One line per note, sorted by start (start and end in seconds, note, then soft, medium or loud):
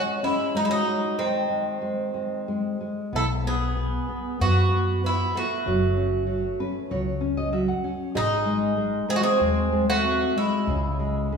0.00 0.22 G#3 medium
0.23 0.53 G#3 medium
0.23 0.54 C#4 medium
0.23 0.56 E4 medium
0.54 0.85 G#3 medium
0.54 0.62 G#3 medium
0.54 0.63 D#4 medium
0.63 0.69 G#3 medium
0.63 0.70 E4 medium
0.69 1.15 F#3 medium
0.69 1.21 D#4 medium
0.87 1.17 G#3 soft
1.18 2.78 D#3 medium
1.18 1.48 G#3 medium
1.18 2.78 C4 medium
1.50 1.80 G#3 soft
1.81 2.13 G#3 medium
2.14 2.47 G#3 soft
2.48 2.79 G#3 medium
2.81 3.12 G#3 soft
3.13 3.96 B1 medium
3.13 3.43 B3 medium
3.13 3.24 E4 medium
3.13 3.24 A4 medium
3.45 3.76 B3 soft
3.45 4.38 B3 medium
3.45 4.41 G#4 medium
3.77 4.08 B3 medium
4.09 4.38 B3 soft
4.39 5.22 F#2 medium
4.39 4.70 B3 medium
4.39 5.01 B3 medium
4.39 5.01 F#4 medium
4.71 5.02 B3 medium
5.03 5.34 B3 medium
5.03 5.35 E4 medium
5.35 7.17 A3 medium
5.35 5.66 B3 soft
5.35 7.18 F#4 medium
5.66 6.48 F#1 medium
5.66 6.26 F#3 medium
5.97 6.27 C#4 soft
6.27 6.58 F#3 medium
6.60 6.90 C#4 medium
6.60 6.89 B4 medium
6.91 7.72 C#2 medium
6.91 7.21 F#3 medium
6.91 7.34 C#5 medium
7.21 7.51 C#4 medium
7.37 7.52 D#5 medium
7.52 7.83 F#3 medium
7.52 7.67 E5 medium
7.68 8.12 F#5 medium
7.84 8.14 C#4 medium
8.15 8.96 G#1 medium
8.15 9.05 G#3 medium
8.15 9.05 D#4 loud
8.15 10.63 G#4 medium
8.46 8.76 G#3 medium
8.77 9.07 G#3 medium
9.09 9.39 G#3 medium
9.09 9.15 C4 medium
9.09 9.16 G#4 loud
9.16 9.22 A3 medium
9.16 9.23 F#4 medium
9.23 9.84 C4 medium
9.23 9.84 G#4 loud
9.40 10.23 D#2 medium
9.40 9.71 G#3 medium
9.73 10.03 G#3 medium
9.90 10.33 A3 medium
9.90 10.37 F#4 loud
10.04 10.35 C4 medium
10.36 10.67 G#3 medium
10.36 11.37 G#3 medium
10.36 11.37 E4 medium
10.67 11.37 C#2 medium
10.67 11.31 C#3 medium
10.99 11.30 G#3 medium
11.32 11.37 C#3 soft